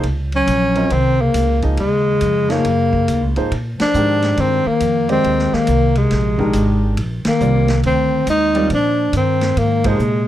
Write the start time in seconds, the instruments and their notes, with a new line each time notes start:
0.03 upright bass C#2, ride
0.32 bass clarinet F#3, tenor saxophone C#4, ride
0.47 upright bass A#1, hi-hat pedal, ride
0.75 grand piano F#3 C4 F4 A#4 D#5, ride
0.90 upright bass C2, bass clarinet D#3, tenor saxophone C4, ride
1.20 bass clarinet C#3, tenor saxophone A#3
1.34 upright bass C#2, hi-hat pedal, ride
1.62 grand piano F3 A#3 D#4 G#4 D#5, kick, ride
1.77 upright bass D#2, bass clarinet C#3, tenor saxophone G#3, ride
2.21 upright bass F2, hi-hat pedal, ride
2.49 bass clarinet C#3, grand piano F3 A#3 D#4 G#4 C#5, tenor saxophone A#3, snare, ride
2.65 upright bass F#2, ride
2.93 kick
3.08 upright bass D#2, hi-hat pedal, ride
3.22 upright bass C#2
3.36 upright bass G#1, grand piano F3 A#3 D#4 G#4 C5, ride
3.51 upright bass A#2, ride
3.79 bass clarinet F3, tenor saxophone D4, muted upright bass stroke, snare, ride
3.94 upright bass G#2, grand piano D#3 G#3 D4 G4 A#4, hi-hat pedal
4.22 snare, ride
4.37 upright bass G2, bass clarinet D#3, tenor saxophone C4, ride
4.66 bass clarinet D#3, tenor saxophone A#3, muted upright bass stroke
4.80 upright bass F2, hi-hat pedal, ride
5.09 bass clarinet D#3, grand piano G#3 G4 C5 D5 D#5, tenor saxophone C4, ride
5.24 upright bass D#2, ride
5.39 snare
5.52 bass clarinet D#3, tenor saxophone A#3, muted upright bass stroke, snare
5.67 upright bass C2, hi-hat pedal, ride
5.95 bass clarinet C3, tenor saxophone G#3, ride
6.11 upright bass A#1, snare, ride
6.38 grand piano D#3 G#3 D4 G4 A#4, kick
6.53 upright bass G#1, hi-hat pedal, ride
6.97 upright bass A#1, ride
7.25 bass clarinet D#3, tenor saxophone A#3, muted upright bass stroke, snare, ride
7.40 upright bass C2, grand piano G3 C4 F4 A#4 D5, hi-hat pedal
7.68 snare, ride
7.83 upright bass D2, bass clarinet D#3, tenor saxophone C4, ride
8.26 upright bass D#2, bass clarinet G#3, tenor saxophone D#4, hi-hat pedal, ride
8.55 grand piano G3 C4 F4 A#4 D5, ride
8.70 upright bass A#2, bass clarinet F3, ride
8.74 tenor saxophone D4
9.13 upright bass G2, bass clarinet D#3, hi-hat pedal, ride
9.17 tenor saxophone C4
9.41 snare, ride
9.56 upright bass G#2, bass clarinet D#3, tenor saxophone A#3, ride
9.84 bass clarinet C3, grand piano F3 A#3 D#4 G#4 C5, tenor saxophone G#3, kick, ride
9.99 upright bass A#2, hi-hat pedal